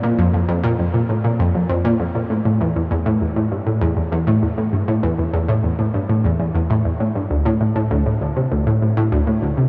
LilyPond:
\new Staff \with { instrumentName = "Synth arpeggio sound" } { \clef bass \time 4/4 \key a \phrygian \tempo 4 = 99 bes,16 f,16 f,16 f,16 bes,16 f,16 bes,16 a,16 bes,16 f,16 f,16 f,16 bes,16 f,16 bes,16 a,16 | a,16 e,16 e,16 e,16 a,16 e,16 a,16 g,16 a,16 e,16 e,16 e,16 a,16 e,16 a,16 g,16 | a,16 e,16 e,16 e,16 a,16 e,16 a,16 g,16 a,16 e,16 e,16 e,16 a,16 e,16 a,16 g,16 | d,16 a,16 a,16 a,16 d,16 a,16 d,16 c16 d,16 a,16 a,16 a,16 d,16 a,16 d,16 c16 | }